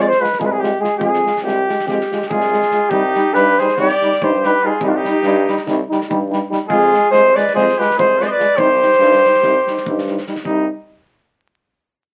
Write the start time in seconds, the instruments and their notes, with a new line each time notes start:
0.00 flugelhorn D5
0.08 flugelhorn C5, snare
0.19 euphonium G#3 F4, flugelhorn B4
0.24 snare
0.33 snare
0.39 tuba C2, euphonium G#3 F4, flugelhorn G#4, kick
0.46 flugelhorn B4
0.51 flugelhorn G#4
0.60 euphonium G#3 F4, flugelhorn G4
0.64 snare
0.80 euphonium G#3 F4, flugelhorn G#4, snare
0.97 tuba F2, euphonium G#3 F4, flugelhorn G#4, kick
1.14 snare
1.23 euphonium G#3 F4, snare
1.36 snare
1.42 tuba C2, euphonium G#3 F4, flugelhorn G4
1.47 snare
1.67 euphonium G#3 F4, snare
1.79 snare
1.86 tuba F2, euphonium G#3 F4, flugelhorn G4, kick, snare
2.01 snare
2.11 euphonium G#3 F4, snare
2.22 snare
2.29 tuba C2, euphonium G#3 F4, trumpet F4, flugelhorn G#4, kick
2.41 snare
2.52 euphonium G#3 F4, snare
2.62 snare
2.71 euphonium G#3 F4, snare
2.89 tuba C2, euphonium G3 D#4, trumpet D#4, flugelhorn G4, kick
3.15 euphonium G3 D#4, snare
3.33 tuba G2, euphonium G3, trumpet G4, flugelhorn B4, snare
3.37 euphonium D#4
3.58 euphonium G3 D#4, trumpet G#4, flugelhorn C5, snare
3.68 snare
3.76 tuba C2, euphonium G3 D#4, trumpet G4, flugelhorn D5, kick, snare
3.89 snare
4.01 euphonium G3 D#4, snare
4.12 snare
4.20 tuba G2, euphonium G3 D#4, trumpet G4, kick
4.24 flugelhorn C5
4.41 euphonium G3 D#4, trumpet G4, snare
4.46 flugelhorn B4
4.63 euphonium G3 D#4, trumpet F4, flugelhorn G#4
4.81 tuba C2, euphonium G3 D#4, trumpet D#4, flugelhorn G4, kick
4.87 trumpet D4, flugelhorn F4
4.95 trumpet D#4, flugelhorn G4
5.04 euphonium G3, snare
5.09 euphonium D#4
5.23 tuba G2, euphonium G3 D#4, snare
5.48 euphonium G3 D#4, snare
5.57 snare
5.66 tuba C2, euphonium G3 D#4, kick, snare
5.89 euphonium G3 D#4, snare
6.01 snare
6.08 tuba G2, euphonium G3 D#4, kick
6.29 euphonium G3 D#4, snare
6.49 euphonium G3 D#4, snare
6.69 tuba F2, euphonium G#3 F4, trumpet F4, flugelhorn G#4, kick
6.91 euphonium G#3 F4, snare
7.10 tuba C2, euphonium G#3 F4, trumpet G#4, flugelhorn C5, snare
7.35 euphonium G#3 F4, trumpet B4, flugelhorn D5, snare
7.48 snare
7.54 tuba F2, euphonium G#3 F4, trumpet G#4, flugelhorn C5, kick
7.58 snare
7.69 snare
7.78 euphonium G#3 F4, trumpet G4, flugelhorn B4, snare
7.90 snare
7.96 tuba C2, euphonium G#3 F4, trumpet G#4, flugelhorn C5, kick
8.18 euphonium G#3 F4, trumpet B4, flugelhorn D5, snare
8.26 trumpet C5, flugelhorn D#5
8.31 trumpet B4, flugelhorn D5
8.38 euphonium G#3 F4, snare
8.56 tuba C2, euphonium G3 D#4, trumpet G4, flugelhorn C5, kick
8.81 euphonium G3 D#4, snare
8.93 snare
8.99 tuba G2, euphonium G3 D#4, snare
9.13 snare
9.24 euphonium G3 D#4, snare
9.34 snare
9.42 tuba C2, euphonium G3 D#4, kick, snare
9.66 euphonium G3 D#4, snare
9.77 snare
9.85 tuba G2, euphonium G3 D#4, kick
9.98 snare
10.07 euphonium G3 D#4, snare
10.18 snare
10.27 euphonium G3 D#4, snare
10.36 snare
10.44 tuba C2, euphonium G3 D#4, trumpet D#4, flugelhorn G4, kick